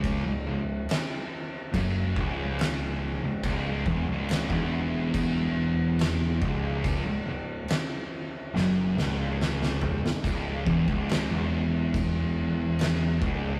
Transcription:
<<
  \new Staff \with { instrumentName = "Distorted electric guitar" } { \clef bass \time 4/4 \key cis \minor \tempo 4 = 71 cis,16 cis,16 cis,8 r4 fis,8 cis,4~ cis,16 cis,16 | cis,8 e,16 cis,8 e,2~ e,16 cis,8~ | cis,16 cis,16 cis,8 r4 fis,8 cis,4~ cis,16 cis,16 | cis,8 e,16 cis,8 e,2~ e,16 cis,8 | }
  \new Staff \with { instrumentName = "Distorted electric guitar" } { \clef bass \time 4/4 \key cis \minor cis,16 cis,16 cis,8 r4 fis,8 cis,4~ cis,16 cis,16 | cis,8 e,16 cis,8 e,2~ e,16 cis,8~ | cis,16 cis,16 cis,8 r4 fis,8 cis,4~ cis,16 cis,16 | cis,8 e,16 cis,8 e,2~ e,16 cis,8 | }
  \new Staff \with { instrumentName = "Picked electric bass" } { \clef bass \time 4/4 \key cis \minor cis,,16 cis,,16 cis,,8 r4 fis,,8 cis,,4~ cis,,16 cis,,16 | cis,,8 e,,16 cis,,8 e,,2~ e,,16 cis,,8~ | cis,,16 cis,,16 cis,,8 r4 fis,,8 cis,,4~ cis,,16 cis,,16 | cis,,8 e,,16 cis,,8 e,,2~ e,,16 cis,,8 | }
  \new DrumStaff \with { instrumentName = "Drums" } \drummode { \time 4/4 <cymc bd>4 <cymc sn>4 <cymc bd>8 bd8 <cymc sn>4 | <cymc bd>8 bd8 <cymc sn>16 bd8. <cymc bd>4 <cymc sn>8 bd8 | <cymc bd>4 <cymc sn>4 sn8 sn8 sn16 sn16 tomfh16 sn16 | <cymc bd>8 bd16 bd16 <cymc sn>4 <cymc bd>4 <cymc sn>8 bd8 | }
>>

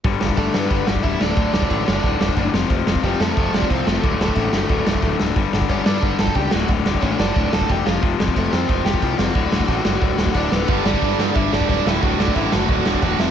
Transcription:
<<
  \new Staff \with { instrumentName = "Lead electric guitar" } { \time 4/4 \key g \lydian \tempo 4 = 180 r4 <a a'>8 <b b'>4 <fis' fis''>8 <e' e''>8 <d' d''>8~ | <d' d''>8 <d' d''>4 <d' d''>2 r8 | r4 <g g'>8 <a a'>4 <d' d''>8 <c' c''>8 <a a'>8~ | <a a'>8 <a a'>4 <a a'>2 r8 |
r4 <cis' cis''>8 <d' d''>4 <a' a''>8 <g' g''>8 <fis' fis''>8 | r4 <cis' cis''>8 <d' d''>4 <a' a''>8 <g' g''>8 <f' f''>8 | r4 <a a'>8 <c' c''>4 <g' g''>4 <fis' fis''>8~ | <fis' fis''>2. <d' d''>8 <b b'>8~ |
<b b'>8 <d' d''>4. <e' e''>8 <d' d''>8 <d' d''>8 <e' e''>8 | <fis' fis''>8 <d' d''>8 <e' e''>8 <fis' fis''>4. <fis' fis''>8 <e' e''>8 | }
  \new Staff \with { instrumentName = "Distorted electric guitar" } { \clef bass \time 4/4 \key g \lydian r1 | r1 | r1 | r1 |
r1 | r1 | r1 | r1 |
<g, d g>8 <g, d g>8 <g, d g>8 <g, d g>8 <g, d g>8 <g, d g>8 <g, d g>8 <d, a, d>8 | <d, a, d>8 <d, a, d>8 <d, a, d>8 <d, a, d>8 <d, a, d>8 <d, a, d>8 <d, a, d>8 <f, c f>8 | }
  \new Staff \with { instrumentName = "Overdriven electric guitar" } { \clef bass \time 4/4 \key g \lydian <g, d g>8 <g, d g>8 <g, d g>8 <g, d g>8 <g, d g>8 <g, d g>8 <g, d g>8 <d, a, d>8 | <d, a, d>8 <d, a, d>8 <d, a, d>8 <d, a, d>8 <d, a, d>8 <d, a, d>8 <d, a, d>8 <f, c f>8 | <f, c f>8 <f, c f>8 <f, c f>8 <f, c f>8 <f, c f>8 <f, c f>8 <f, c f>8 <f, c f>8 | <d, a, d>8 <d, a, d>8 <d, a, d>8 <d, a, d>8 <d, a, d>8 <d, a, d>8 <d, a, d>8 <d, a, d>8 |
<g, d g>8 <g, d g>8 <g, d g>8 <g, d g>8 <g, d g>8 <g, d g>8 <g, d g>8 <d, a, d>8 | <d, a, d>8 <d, a, d>8 <d, a, d>8 <d, a, d>8 <d, a, d>8 <d, a, d>8 <d, a, d>8 <f, c f>8 | <f, c f>8 <f, c f>8 <f, c f>8 <f, c f>8 <f, c f>8 <f, c f>8 <f, c f>8 <f, c f>8 | <d, a, d>8 <d, a, d>8 <d, a, d>8 <d, a, d>8 <d, a, d>8 <d, a, d>8 <d, a, d>8 <d, a, d>8 |
<g, d g>8 <g, d g>8 <g, d g>8 <g, d g>8 <g, d g>8 <g, d g>8 <g, d g>8 <d, a, d>8 | <d, a, d>8 <d, a, d>8 <d, a, d>8 <d, a, d>8 <d, a, d>8 <d, a, d>8 <d, a, d>8 <f, c f>8 | }
  \new Staff \with { instrumentName = "Picked electric bass" } { \clef bass \time 4/4 \key g \lydian g,,8 g,,8 g,,8 g,8 g,,8 g,,8 d,,8 d,,8 | d,,8 d,,8 a,,8 fis,,8 d,,8 d,,8 fis,,8 f,,8 | f,,8 f,,8 f,,8 f,8 f,,8 f,,8 c,8 f,,8 | d,,8 d,,8 a,,8 fis,,8 d,,8 d,,8 d,,8 d,,8 |
g,,8 g,,8 g,,8 g,8 g,,8 g,,8 cis,8 d,,8 | d,,8 d,,8 a,,8 fis,,8 d,,8 d,,8 e,,8 f,,8 | f,,8 f,,8 f,,8 f,8 f,,8 f,,8 c,8 f,,8 | d,,8 d,,8 a,,8 fis,,8 d,,8 d,,8 d,,8 d,,8 |
g,,8 g,,8 g,,8 g,8 g,,8 g,,8 d,,8 d,,8 | d,,8 d,,8 a,,8 fis,,8 d,,8 d,,8 e,,8 f,,8 | }
  \new DrumStaff \with { instrumentName = "Drums" } \drummode { \time 4/4 <hho bd>8 sn16 bd16 <hho bd>8 sn8 <hho bd>8 sn16 bd16 <hho bd>8 sn8 | <hho bd>8 sn16 bd16 <hho bd>8 sn8 <hho bd>8 sn16 bd16 <hho bd>8 sn8 | <hho bd>8 sn16 bd16 <hho bd>8 sn8 <hho bd>8 sn16 bd16 <hho bd>8 sn8 | <hho bd>8 sn16 bd16 <hho bd>8 sn8 <hho bd>8 sn16 bd16 <hho bd>8 sn8 |
<hho bd>8 sn16 bd16 <hho bd>8 sn8 <hho bd>8 sn16 bd16 <hho bd>8 sn8 | <hho bd>8 sn16 bd16 <hho bd>8 sn8 <hho bd>8 sn16 bd16 <hho bd>8 sn8 | <hho bd>8 sn16 bd16 <hho bd>8 sn8 <hho bd>8 sn16 bd16 <hho bd>8 sn8 | <hho bd>8 sn16 bd16 <hho bd>8 sn8 <hho bd>8 sn16 bd16 <hho bd>8 sn8 |
<hho bd>8 sn16 bd16 <hho bd>8 sn8 <hho bd>8 sn16 bd16 <hho bd>8 sn8 | <hho bd>8 sn16 bd16 <hho bd>8 sn8 <hho bd>8 sn16 bd16 <hho bd>8 sn8 | }
>>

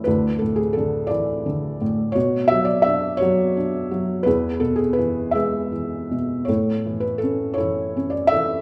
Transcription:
<<
  \new Staff \with { instrumentName = "Felt piano" } { \time 6/8 \key a \major \tempo 4. = 57 << { b'8 a'16 gis'16 a'8 d''4 r8 | cis''8 e''16 d''16 e''8 cis''4. | b'8 a'16 gis'16 b'8 e''4 r8 | cis''8. b'16 a'8 cis''8. d''16 e''8 | } \\ { <d' e'>4. a'4. | fis'4. fis'4. | <e' gis'>4. <gis' b'>4. | <e' a'>4. <e' a'>4 a'8 | } >> }
  \new Staff \with { instrumentName = "Felt piano" } { \clef bass \time 6/8 \key a \major d,8 a,8 d8 e8 d8 a,8 | b,8 fis8 d'8 fis8 d'8 fis8 | e,8 b,8 e8 gis8 e8 b,8 | a,8 e8 cis'8 e8 cis'8 e8 | }
>>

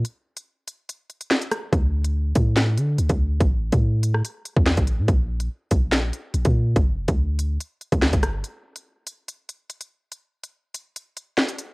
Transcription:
<<
  \new Staff \with { instrumentName = "808-style bass" } { \clef bass \time 4/4 \key g \dorian \tempo 4 = 143 r1 | d,4. a,4 d8 d,16 d,8. | a,,8. a,4~ a,16 r8. e,8 a,,8 a,16 | bes,,4 r8 bes,,4 r8 bes,,16 bes,8. |
g,,8 f,,16 d,4~ d,16 r8. d,8 g,,8. | r1 | r1 | }
  \new DrumStaff \with { instrumentName = "Drums" } \drummode { \time 4/4 hh8. hh16 r8 hh8 hh8 hh16 hh16 <hc sn>16 hh16 <hh ss>8 | <hh bd>8. hh16 r8 <hh bd>8 <hc hh sn>8 hh8 hh16 <hh bd>8. | <hh bd>8. <hh bd>16 r8 hh16 ss16 hh8 hh16 bd16 <hc sn>16 <hh bd>16 hh8 | <hh bd>8. hh16 r8 <hh bd>8 <hc hh sn>8 hh8 hh16 <hh bd>8. |
<hh bd>8. <hh bd>16 r8 hh8 hh8 hh16 <hh bd>16 <hc sn>16 <hh bd>16 <hh ss>8 | hh8. hh16 r8 hh8 hh8 hh8 hh16 hh8. | hh8. hh16 r8 hh8 hh8 hh8 <hc sn>16 hh16 hh8 | }
>>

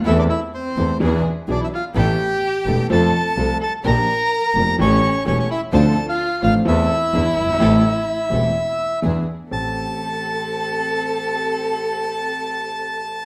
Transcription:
<<
  \new Staff \with { instrumentName = "Bandoneon" } { \time 4/4 \key a \minor \tempo 4 = 127 e''16 d''16 e''8 c''4 r4 d''16 e''16 f''8 | g''2 a''4. a''8 | bes''2 cis''4 cis''16 cis''16 e''8 | a''8. f''8. f''8 e''2~ |
e''2. r4 | a''1~ | a''1 | }
  \new Staff \with { instrumentName = "String section" } { \time 4/4 \key a \minor <c' e' a'>8 r4 <c' e' a'>8 <d' e' gis'>8 r8 <d' e' gis'>8 r8 | <b e' a'>8 r4 <b e' a'>8 <c' f' a'>8 r8 <c' f' a'>8 r8 | <d' g' bes'>8 r4 <d' g' bes'>8 <cis' g' a'>8 r8 <cis' g' a'>8 r8 | <d' f' c''>8 r4 <d' f' c''>8 <c' e' a'>8 r8 <d' e' gis'>8 r8 |
<c' g' a'>8 r4 <c' g' a'>8 r4 <d' e' gis'>8 r8 | <c' g' a'>1~ | <c' g' a'>1 | }
  \new Staff \with { instrumentName = "Violin" } { \time 4/4 \key a \minor e'16 d'16 e'8 c'4 r4 d'16 e'16 f'8 | g'2 a'4. a'8 | bes'2 cis'4 cis'16 cis'16 e'8 | a'8. f'8. f'8 e'2~ |
e'2. r4 | a'1~ | a'1 | }
  \new Staff \with { instrumentName = "Grand piano" } { \time 4/4 \key a \minor <e, e a c' a'>8 r4 <e, e a c' a'>8 <e, e b d' gis'>8 r8 <b,, b, e b d' gis'>8 r8 | <a,, a, e a b a'>8 r4 <e,, e, e a b a'>8 <f, f a c' a'>8 r8 <c, c f a c' a'>8 r8 | <bes,, bes, f bes d' g'>8 r4 <f,, f, f bes d' g'>8 <a,, a, e a cis' g'>8 r8 <e,, e, e a cis' g'>8 r8 | <d, d f c' d' a'>8 r4 <a,, a, f c' d' a'>8 <e, e a c' a'>8 r8 <e, e b d' gis'>8 r32 fis,,32 g,,32 gis,,32 |
<a,, a, e a c' g'>8 r4 <e,, e, e a c' g'>8 r4 <e, e b d' gis'>8 r8 | <a,, c' g' a'>1~ | <a,, c' g' a'>1 | }
  \new Staff \with { instrumentName = "Double bass" } { \clef bass \time 4/4 \key a \minor e,8 r4 e,8 e,8 r8 b,,8 r8 | a,,8 r4 e,,8 f,8 r8 c,8 r8 | bes,,8 r4 f,,8 a,,8 r8 e,,8 r8 | d,8 r4 a,,8 e,8 r8 e,8 g,,8 |
a,,8 r4 e,,8 r4 e,8 r8 | a,,8 r2. r8 | r1 | }
>>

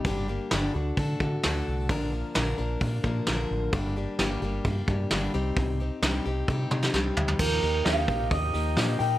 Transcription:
<<
  \new Staff \with { instrumentName = "Clean electric guitar" } { \time 4/4 \key g \minor \tempo 4 = 131 r1 | r1 | r1 | r1 |
bes'4 f''4 ees''4. g''8 | }
  \new Staff \with { instrumentName = "Tonewheel organ" } { \time 4/4 \key g \minor r1 | r1 | r1 | r1 |
<f bes ees' g'>1 | }
  \new Staff \with { instrumentName = "Steel-string acoustic guitar" } { \time 4/4 \key g \minor <g, d g bes d' g'>8 <g bes d' g'>8 <g, d g bes d' g'>8 <d' fis' a'>8 <a d' fis' a'>8 <d' fis' a'>8 <d a d' fis' a'>4 | <bes, d f bes d' bes'>8 <f bes d' bes'>8 <bes, d f bes d' bes'>8 <f bes d' bes'>8 <f bes d' bes'>8 <f bes d' bes'>8 <bes, d f bes d' bes'>4 | <g, d g bes d' g'>8 <g bes d' g'>8 <g, d g bes d' g'>8 <g bes d' g'>8 <g bes d' g'>8 <g bes d' g'>8 <g, d g bes d' g'>8 <c g c' ees' g'>8~ | <c g c' ees' g'>8 <c' ees' g'>8 <c g c' ees' g'>8 <c' ees' g'>8 <g c' ees' g'>8 <c' ees' g'>8 <c g c' ees' g'>4 |
<ees f bes ees' g'>8 <bes ees' g'>8 <f bes ees' g'>4. <bes ees' g'>8 <f bes ees' g'>8 <bes ees' g'>8 | }
  \new Staff \with { instrumentName = "Fingered electric bass" } { \clef bass \time 4/4 \key g \minor g,,4 g,,8 d,8 d8 d8 d,8 c,8 | bes,,4 bes,,8 bes,,8 bes,8 bes,8 bes,,8 a,,8 | g,,4 g,,8 g,,8 g,8 g,8 g,,8 c,8 | c,4 c,8 c,8 c8 c8 c,8 d,8 |
ees,8 ees,8 ees,8 bes,,8 ees,8 ees,8 bes,8 bes,8 | }
  \new DrumStaff \with { instrumentName = "Drums" } \drummode { \time 4/4 <hho bd>4 <hho sn>4 <hho bd>8 bd8 <hho sn>4 | <hho bd>4 <hho sn>4 <hho bd>8 bd8 <hho sn>4 | <hho bd>4 <hho sn>4 <hho bd>8 bd8 <hho sn>4 | <hho bd>4 <hho sn>4 bd8 toml16 sn16 sn8 tomfh16 tomfh16 |
<cymc bd>8 hho8 <hho sn>8 <hho bd>8 <hho bd>8 hho8 <hho sn>8 hho8 | }
>>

